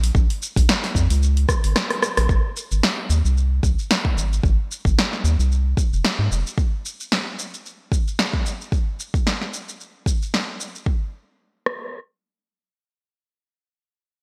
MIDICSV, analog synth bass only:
0, 0, Header, 1, 2, 480
1, 0, Start_track
1, 0, Tempo, 535714
1, 136, Time_signature, 4, 2, 24, 8
1, 12747, End_track
2, 0, Start_track
2, 0, Title_t, "Analog synth bass"
2, 0, Program_c, 0, 38
2, 0, Note_on_c, 0, 34, 80
2, 100, Note_off_c, 0, 34, 0
2, 133, Note_on_c, 0, 34, 103
2, 246, Note_off_c, 0, 34, 0
2, 507, Note_on_c, 0, 34, 99
2, 597, Note_off_c, 0, 34, 0
2, 851, Note_on_c, 0, 41, 102
2, 966, Note_off_c, 0, 41, 0
2, 989, Note_on_c, 0, 37, 108
2, 1308, Note_off_c, 0, 37, 0
2, 1469, Note_on_c, 0, 32, 84
2, 1558, Note_off_c, 0, 32, 0
2, 1949, Note_on_c, 0, 34, 97
2, 2038, Note_off_c, 0, 34, 0
2, 2432, Note_on_c, 0, 32, 90
2, 2520, Note_off_c, 0, 32, 0
2, 2773, Note_on_c, 0, 39, 103
2, 2887, Note_off_c, 0, 39, 0
2, 2909, Note_on_c, 0, 36, 102
2, 3227, Note_off_c, 0, 36, 0
2, 3254, Note_on_c, 0, 36, 80
2, 3367, Note_off_c, 0, 36, 0
2, 3738, Note_on_c, 0, 32, 83
2, 3942, Note_off_c, 0, 32, 0
2, 3976, Note_on_c, 0, 32, 98
2, 4088, Note_off_c, 0, 32, 0
2, 4347, Note_on_c, 0, 32, 91
2, 4437, Note_off_c, 0, 32, 0
2, 4694, Note_on_c, 0, 39, 102
2, 4807, Note_off_c, 0, 39, 0
2, 4826, Note_on_c, 0, 36, 96
2, 5146, Note_off_c, 0, 36, 0
2, 5305, Note_on_c, 0, 29, 83
2, 5396, Note_off_c, 0, 29, 0
2, 5544, Note_on_c, 0, 44, 82
2, 5636, Note_off_c, 0, 44, 0
2, 5652, Note_on_c, 0, 29, 72
2, 5766, Note_off_c, 0, 29, 0
2, 12747, End_track
0, 0, End_of_file